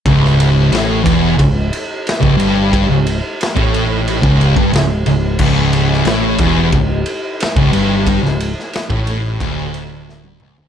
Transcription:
<<
  \new Staff \with { instrumentName = "Distorted electric guitar" } { \clef bass \time 4/4 \key a \lydian \tempo 4 = 90 cis,4 a,8 e,8 cis,8 r8. cis,16 g,8~ | g,16 cis,8 r8 a,4 cis,8 g,16 cis,8 cis,8 | cis,4 a,8 e,8 cis,8 r8. cis,16 g,8~ | g,16 cis,8 r8 a,8. d,4. cis,16 d,16 | }
  \new Staff \with { instrumentName = "Picked electric bass" } { \clef bass \time 4/4 \key a \lydian cis,,4 a,,8 e,,8 cis,,8 r8. cis,,16 g,,8~ | g,,16 cis,,8 r8 a,,4 cis,,8 g,,16 cis,,8 cis,,8 | cis,,4 a,,8 e,,8 cis,,8 r8. cis,,16 g,,8~ | g,,16 cis,,8 r8 a,,8. d,,4. cis,,16 d,,16 | }
  \new DrumStaff \with { instrumentName = "Drums" } \drummode { \time 4/4 <bd cymr>16 sn16 cymr8 <cymr sn>8 <bd cymr>8 <bd cymr>8 cymr8 <cymr sn>16 bd16 cymr8 | <bd cymr>8 cymr8 <cymr sn>16 bd16 cymr8 cymr16 bd16 cymr16 bd16 <cymr sn>8 cymr8 | <cymc bd>8 cymr16 sn16 <cymr sn>8 <bd cymr>8 <bd cymr>8 cymr8 <cymr sn>16 bd16 cymr8 | <bd cymr>16 sn16 cymr16 sn16 <cymr sn>16 bd16 cymr8 <bd cymr>8 cymr8 sn16 tommh16 toml16 tomfh16 | }
>>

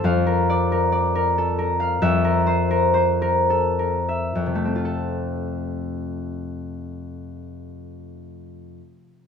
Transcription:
<<
  \new Staff \with { instrumentName = "Harp" } { \time 3/4 \key f \major \tempo 4 = 74 \tuplet 3/2 { r8 bes'8 d''8 bes'8 d''8 bes'8 a'8 bes'8 f''8 } | \tuplet 3/2 { r8 bes'8 c''8 bes'8 c''8 bes'8 a'8 bes'8 e''8 } | r2. | r2. | }
  \new Staff \with { instrumentName = "Harp" } { \time 3/4 \key f \major <f, f''>2. | <f, e''>2. | <f, c a c' f' a'>2.~ | <f, c a c' f' a'>2. | }
>>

